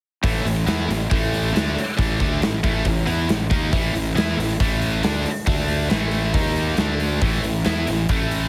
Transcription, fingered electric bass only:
0.24 A1
0.45 A1
0.67 E2
0.88 A1
1.11 A1
1.54 D2
1.76 muted fingered electric bass stroke
1.99 A1
2.20 D2
2.41 A1
2.64 A1
2.86 A1
3.07 E2
3.29 A1
3.51 D#2
3.73 A1
3.94 A1
4.15 E2
4.37 A1
4.60 A1
5.04 D2
5.24 muted fingered electric bass stroke
5.47 D2
5.91 A1
6.34 D#2
6.78 D2
7.22 A1
7.44 A1
7.66 E2
7.87 A1
8.09 A1

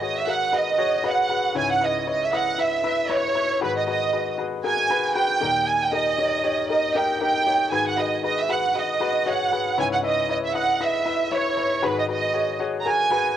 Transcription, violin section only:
0.03 D#5
0.18 E5
0.30 F#5
0.55 D#5
1.06 F#5
1.58 G#5
1.72 F#5
1.84 D#5
2.10 D#5
2.24 E5
2.36 F#5
2.61 E5
3.12 C#5
3.63 B4
3.78 D#5
3.88 D#5
4.65 G#5
5.17 G5
5.68 G#5
5.83 G5
5.94 D#5
6.70 D#5
6.96 G5
7.22 G5
7.73 G#5
7.87 F#5
7.99 D#5
8.25 D#5
8.40 E5
8.51 F#5
8.77 D#5
9.29 F#5
9.80 G#5
9.94 F#5
10.05 D#5
10.31 D#5
10.45 E5
10.56 F#5
10.83 E5
11.34 C#5
11.85 B4
12.00 D#5
12.11 D#5
12.81 A#5
12.88 G#5

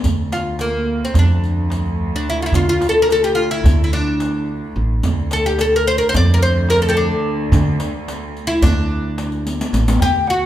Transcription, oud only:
0.33 F4
0.61 A#3
1.05 C4
1.19 D4
2.16 D4
2.30 E4
2.42 E4 F4
2.55 F4
2.69 F4
2.89 A4
3.02 A#4
3.12 A4
3.24 G4
3.35 F4
3.51 E4
3.84 E4
3.93 D4
5.33 A4
5.46 G4
5.61 A4
5.76 A#4
5.87 C5
5.98 A#4
6.09 C5
6.16 D5
6.34 A#4
6.42 C5
6.70 A#4
6.82 A4
6.88 G4 A4
6.97 D4
8.47 E4
8.62 D4
10.02 G4
10.30 F#4

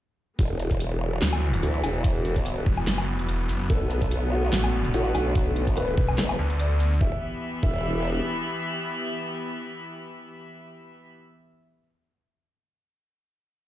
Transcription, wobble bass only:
0.39 E1
1.63 D2
1.84 E1
3.70 B1
4.94 A1
5.15 B1
6.18 F#1
7.01 E1
7.63 E1

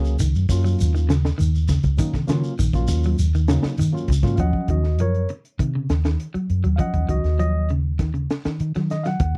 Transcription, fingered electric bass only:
Already playing: C#2
0.22 C#2
0.36 F#2
0.49 F#2
0.81 D#2
1.39 D#2
1.84 C#2
1.99 D#3
2.29 D#3
2.59 A#1
2.74 A#1
2.88 D#2
3.20 D#2
3.64 muted fingered electric bass stroke
3.78 D#3
4.09 C#2
4.23 G#2
4.38 D#2
4.68 D#2
4.99 F#2
5.60 C3
5.90 D#2
6.35 muted fingered electric bass stroke
6.50 F#2
6.65 D#2
6.93 D#2
7.08 C#2
7.24 D#2
8.46 muted fingered electric bass stroke
8.60 D#3
8.76 D#3
9.20 D#2

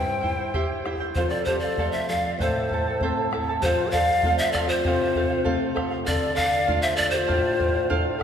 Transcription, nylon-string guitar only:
Already playing: G2
0.24 E4
0.55 G4
0.86 E4
1.16 F2
1.47 F3
1.77 A3
2.09 F3
2.39 A2
2.69 A3
3.01 C4
3.31 A3
3.62 F2
4.23 A3 C4 F4
4.85 C3
5.45 A3 C4 F4
6.07 D3
6.68 A3 D4 F4
7.29 A2
7.90 A3 D4 F4

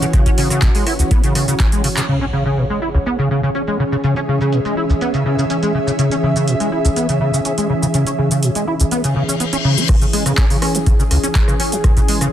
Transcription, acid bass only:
0.02 C#3
0.13 C#3
0.26 C#4
0.38 C#3
0.51 C#3
0.62 B2
0.75 G#3
0.87 E4
0.99 C#2
1.11 B3
1.24 C#3
1.36 C#3
1.48 C#3
1.60 C#4
1.72 G#3
1.84 C#3
1.97 C#3
2.09 C#3
2.21 C#4
2.33 C#3
2.46 C#3
2.57 B2
2.70 G#3
2.82 E4
2.94 C#2
3.06 B3
3.19 C#3
3.31 C#3
3.43 C#3
3.55 C#4
3.68 G#3
3.79 C#3
3.92 C#3
4.04 C#3
4.17 C#4
4.28 C#3
4.41 C#3
4.53 B2
4.65 G#3
4.77 E4
4.90 C#2
5.01 B3
5.14 C#3
5.26 C#3
5.38 C#3
5.50 C#4
5.63 G#3
5.74 C#3
5.87 C#3
5.99 C#3
6.12 C#4
6.23 C#3
6.36 C#3
6.48 B2
6.60 G#3
6.72 E4
6.85 C#2
6.96 B3
7.09 C#3
7.21 C#3
7.34 C#3
7.45 C#4
7.58 G#3
7.70 C#3
7.82 C#3
7.94 C#3
8.07 C#4
8.19 C#3
8.31 C#3
8.43 B2
8.55 G#3
8.67 E4
8.80 C#2
8.92 B3
9.04 C#3
9.16 C#3
9.29 C#4
9.40 B3
9.53 C#4
9.64 C#3
9.77 C#4
9.89 C#3
10.01 C#3
10.13 G#3
10.26 C#3
10.38 C#4
10.50 C#3
10.62 C#4
10.75 E3
10.87 C#3
10.99 C#3
11.11 C#2
11.23 C#4
11.35 C#4
11.48 C#3
11.60 C#4
11.72 E3
11.84 C#3
11.97 C#3
12.09 G#3
12.21 C#3

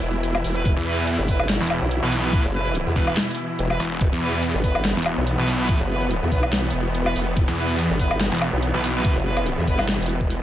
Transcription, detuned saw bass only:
0.77 E2
1.61 E1
2.02 B1
2.96 E1
3.80 E1
4.12 E2
4.96 E1
5.38 B1
7.48 E2
8.32 E1
8.74 B1

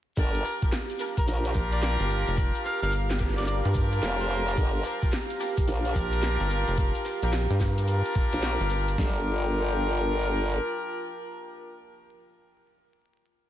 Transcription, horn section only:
0.17 D4 F4 G4 A#4
0.62 D4 F4 G4 A#4
1.00 D4 F4 G4 A#4
2.82 D4 F4 G4 A#4
3.20 D4 F4 G4 A#4
5.02 D4 F4 G4 A#4
5.40 D4 F4 G4 A#4
7.22 D4 F4 G4 A#4
7.60 D4 F4 G4 A#4
8.98 D4 F4 G4 A#4

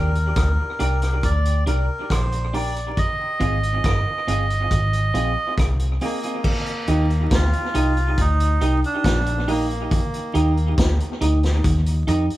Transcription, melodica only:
Already playing: A#4
1.25 D5
1.68 A#4
2.11 C5
2.55 D5
2.98 D#5
6.04 A#3
7.34 F4
8.20 D#4
8.85 D4
9.49 A#3

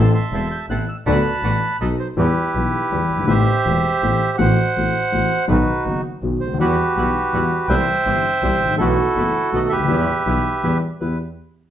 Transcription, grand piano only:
Already playing: A1 A2 E3 A3 C4 A4
0.32 E1 E2
0.70 A1 A2
1.06 D2 D3 F#3 B3 D4 A4
1.44 A1 A2
1.82 B1 B2
2.17 E2 E3 G3 B3 G4
2.55 B1 B2 E3 G3 B3 G4
2.92 E2 E3 G3 B3 G4
3.15 F#1 G1
3.24 G#1 A1 A2 E3 A3 G4
3.28 C4
3.66 E1 E2 E3 A3 C4 G4
4.03 A1 A2 E3 A3 C4 G4
4.39 A1 A2 E3 A3 C4 F#4
4.76 A1 A2 E3 A3 C4 F#4
5.12 A1 A2 E3 A3 C4 F#4
5.48 B1 B2 D#3 F#3 B3 F#4
5.85 F#1 F#2 D#3 F#3 B3 F#4
6.23 B1 B2 D#3 F#3 B3 F#4
6.46 C#2
6.51 D2 D#2
6.59 E2 E3 G3 B3 F#4
6.97 B1 B2 E3 G3 B3 F#4
7.34 E2 E3 G3 B3 F#4
7.70 C2 C3 E3 G3 C4 G4
8.06 G1 G2 E3 G3 C4 G4
8.43 C2 C3 E3 G3 C4 G4
8.66 G#1
8.71 A1
8.76 A#1
8.80 B1 B2 E3 A3 B3 F#4
9.16 F#1 F#2 E3 A3 B3 F#4
9.52 B1 B2 D#3 A3 B3 F#4
9.76 C#2 D2
9.85 D#2 E2 E3 G3
9.89 B3 G4
10.26 B1 B2 E3 G3 B3 G4
10.63 E2 E3 G3 B3 G4
11.01 E2 B3 E4 G4

